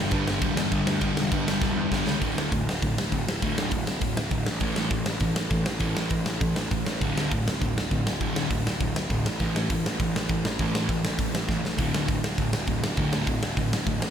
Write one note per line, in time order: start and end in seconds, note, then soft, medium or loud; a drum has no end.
0.00 0.12 G2 loud
0.00 0.11 D3 loud
0.00 0.10 G3 loud
0.11 0.22 G2 loud
0.11 0.40 G2 medium
0.11 0.41 D3 medium
0.11 0.42 G3 medium
0.11 kick loud
0.11 crash medium
0.27 0.37 G1 medium
0.27 snare loud
0.41 0.52 D1 medium
0.41 0.71 G2 loud
0.41 0.70 D3 medium
0.41 0.70 G3 loud
0.41 kick loud
0.41 crash medium
0.56 0.66 E2 medium
0.56 snare loud
0.71 0.82 G1 medium
0.71 0.99 G2 medium
0.71 1.00 D3 medium
0.71 1.01 G3 medium
0.71 kick medium
0.71 crash medium
0.86 0.97 D2 medium
0.86 snare loud
1.01 1.12 G1 loud
1.01 1.32 G2 loud
1.01 1.31 D3 medium
1.01 1.30 G3 loud
1.01 kick medium
1.01 crash medium
1.17 1.27 E1 medium
1.17 snare loud
1.31 1.42 G2 medium
1.31 1.60 G2 medium
1.31 1.61 D3 medium
1.31 1.61 G3 medium
1.31 kick loud
1.31 crash medium
1.47 1.57 G1 medium
1.47 snare loud
1.61 1.72 D1 medium
1.61 1.92 G2 medium
1.61 1.91 D3 medium
1.61 1.90 G3 loud
1.61 kick loud
1.61 snare medium
1.76 1.86 E2 medium
1.91 2.01 G1 medium
1.91 2.21 G2 medium
1.91 2.21 D3 medium
1.91 2.21 G3 medium
1.91 kick medium
1.91 snare medium
2.06 2.16 C#2 medium
2.06 snare medium
2.21 2.35 D1 medium
2.21 2.50 D2 medium
2.21 2.50 A2 loud
2.21 2.51 D3 loud
2.21 kick loud
2.21 open hi-hat soft
2.35 2.51 D1 loud
2.35 snare loud
2.51 2.65 D1 medium
2.51 2.65 D2 medium
2.51 2.65 A2 medium
2.51 kick loud
2.51 open hi-hat medium
2.65 2.81 D1 medium
2.65 snare loud
2.82 2.96 D1 medium
2.82 2.95 D2 medium
2.82 2.96 A2 loud
2.82 kick loud
2.82 open hi-hat medium
2.96 3.11 D1 loud
2.96 snare loud
3.12 3.26 D1 medium
3.12 3.25 D2 medium
3.12 3.25 A2 medium
3.12 kick medium
3.12 open hi-hat medium
3.27 3.41 D1 medium
3.27 snare loud
3.42 3.55 D1 loud
3.42 3.71 D2 medium
3.42 3.71 A2 loud
3.42 3.71 D3 medium
3.42 kick loud
3.42 open hi-hat medium
3.56 3.71 D1 medium
3.56 snare loud
3.71 3.86 D1 medium
3.71 3.85 D2 medium
3.71 3.85 A2 medium
3.71 kick loud
3.71 open hi-hat medium
3.87 4.01 D1 medium
3.87 snare loud
4.01 4.16 D1 medium
4.01 4.15 D2 medium
4.01 4.15 A2 medium
4.01 kick loud
4.01 open hi-hat medium
4.16 4.30 D1 medium
4.16 snare loud
4.31 4.46 D1 medium
4.31 4.45 D2 medium
4.31 4.45 A2 medium
4.31 kick loud
4.31 open hi-hat soft
4.46 4.60 A1 medium
4.46 snare loud
4.60 4.75 A1 loud
4.60 4.89 A2 medium
4.60 4.90 E3 medium
4.60 4.91 A3 loud
4.60 kick loud
4.60 open hi-hat medium
4.76 4.90 A1 loud
4.76 snare loud
4.90 5.06 A1 medium
4.90 5.04 A2 medium
4.90 5.05 E3 medium
4.90 kick loud
4.90 open hi-hat medium
5.06 5.20 A1 loud
5.06 snare loud
5.20 5.35 A1 medium
5.20 5.35 A2 medium
5.20 5.35 E3 medium
5.20 kick loud
5.20 open hi-hat medium
5.36 5.50 A1 medium
5.36 snare loud
5.50 5.65 A1 loud
5.50 5.65 A2 medium
5.50 5.65 E3 medium
5.50 kick loud
5.50 open hi-hat medium
5.66 5.80 A1 medium
5.66 snare loud
5.79 5.95 A1 medium
5.79 6.09 A2 medium
5.79 6.10 E3 medium
5.79 6.10 A3 loud
5.79 kick medium
5.79 open hi-hat medium
5.96 6.10 A1 medium
5.96 snare loud
6.10 6.25 A1 medium
6.10 6.24 A2 medium
6.10 6.24 E3 medium
6.10 kick loud
6.10 open hi-hat medium
6.25 6.40 A1 medium
6.25 snare loud
6.41 6.55 A1 medium
6.41 6.55 A2 medium
6.41 6.55 E3 medium
6.41 kick loud
6.41 open hi-hat medium
6.56 6.71 A1 medium
6.56 snare loud
6.71 6.86 A1 medium
6.71 6.85 A2 medium
6.71 6.85 E3 medium
6.71 kick loud
6.71 open hi-hat medium
6.86 7.00 A1 medium
6.86 snare loud
7.01 7.15 D1 medium
7.01 7.30 D2 medium
7.01 7.31 A2 medium
7.01 7.31 D3 loud
7.01 kick loud
7.01 open hi-hat medium
7.16 7.30 D1 medium
7.16 snare loud
7.31 7.46 D1 medium
7.31 7.45 D2 medium
7.31 7.45 A2 medium
7.31 kick loud
7.31 open hi-hat medium
7.46 7.61 D1 medium
7.46 snare loud
7.61 7.75 D1 medium
7.61 7.74 D2 medium
7.61 7.75 A2 medium
7.61 kick loud
7.61 open hi-hat medium
7.76 7.90 D1 medium
7.76 snare loud
7.91 8.06 D1 medium
7.91 8.05 D2 medium
7.91 8.05 A2 medium
7.91 kick medium
7.91 open hi-hat soft
8.06 8.20 D1 medium
8.06 snare loud
8.20 8.35 D1 loud
8.20 8.50 D2 medium
8.20 8.50 A2 medium
8.20 8.51 D3 loud
8.20 kick loud
8.20 open hi-hat soft
8.36 8.50 D1 medium
8.36 snare loud
8.50 8.65 D1 loud
8.50 8.65 D2 medium
8.50 8.65 A2 medium
8.50 kick loud
8.50 open hi-hat medium
8.65 8.80 D1 medium
8.65 snare loud
8.80 8.95 D1 medium
8.80 8.94 D2 medium
8.80 8.94 A2 medium
8.80 kick loud
8.80 open hi-hat medium
8.96 9.09 D1 medium
8.96 snare loud
9.10 9.24 D1 loud
9.10 9.24 D2 medium
9.10 9.24 A2 medium
9.10 kick medium
9.10 open hi-hat soft
9.26 9.39 A1 medium
9.26 snare loud
9.40 9.55 A1 loud
9.40 9.69 A2 medium
9.40 9.69 E3 medium
9.40 9.70 A3 loud
9.40 kick medium
9.40 open hi-hat medium
9.56 9.69 A1 loud
9.56 snare loud
9.70 9.84 A1 medium
9.70 9.84 A2 medium
9.70 9.84 E3 medium
9.70 kick loud
9.70 open hi-hat medium
9.85 9.99 A1 medium
9.85 snare loud
10.00 10.14 A1 medium
10.00 10.14 A2 medium
10.00 10.14 E3 medium
10.00 kick loud
10.00 open hi-hat medium
10.16 10.29 A1 medium
10.16 snare loud
10.29 10.44 A1 loud
10.29 10.44 A2 medium
10.29 10.44 E3 medium
10.29 kick loud
10.29 open hi-hat medium
10.45 10.59 A1 loud
10.45 snare loud
10.59 10.74 A1 loud
10.59 10.89 A2 medium
10.59 10.89 E3 medium
10.59 10.89 A3 medium
10.59 kick loud
10.59 open hi-hat medium
10.75 10.89 A1 medium
10.75 snare loud
10.89 11.03 A1 medium
10.89 11.03 A2 medium
10.89 11.03 E3 medium
10.89 kick loud
10.89 open hi-hat medium
11.03 11.18 A1 medium
11.03 snare loud
11.19 11.32 A1 medium
11.19 11.33 A2 medium
11.19 11.33 E3 medium
11.19 kick loud
11.19 open hi-hat medium
11.33 11.48 A1 loud
11.33 snare loud
11.49 11.62 A1 loud
11.49 11.63 A2 medium
11.49 11.63 E3 medium
11.49 kick loud
11.49 snare medium
11.63 11.78 A1 medium
11.63 snare medium
11.78 11.93 D1 loud
11.78 12.07 D2 medium
11.78 12.08 A2 loud
11.78 12.08 D3 loud
11.78 kick loud
11.78 open hi-hat medium
11.93 12.08 D1 medium
11.93 snare loud
12.08 12.21 D1 medium
12.08 12.22 D2 medium
12.08 12.22 A2 medium
12.08 kick loud
12.08 open hi-hat medium
12.22 12.37 D1 medium
12.22 snare loud
12.38 12.52 D1 medium
12.38 12.52 D2 medium
12.38 12.52 A2 medium
12.38 kick loud
12.38 open hi-hat medium
12.53 12.67 D1 loud
12.53 snare loud
12.67 12.82 D1 loud
12.67 12.82 D2 medium
12.67 12.82 A2 medium
12.67 kick medium
12.67 open hi-hat soft
12.83 12.97 D1 medium
12.83 snare loud
12.97 13.12 D1 loud
12.97 13.27 D2 medium
12.97 13.27 A2 medium
12.97 13.27 D3 loud
12.97 kick loud
12.97 open hi-hat soft
13.13 13.26 D1 loud
13.13 snare loud
13.27 13.41 D1 medium
13.27 13.41 D2 medium
13.27 13.41 A2 medium
13.27 kick loud
13.27 open hi-hat medium
13.42 13.56 D1 medium
13.42 snare loud
13.57 13.71 D1 medium
13.57 13.71 D2 medium
13.57 13.71 A2 medium
13.57 kick loud
13.57 open hi-hat medium
13.71 13.86 D1 loud
13.71 snare loud
13.86 14.00 D1 medium
13.86 14.00 D2 medium
13.86 14.00 A2 medium
13.86 kick loud
13.86 open hi-hat medium
14.00 14.10 A1 medium
14.00 snare loud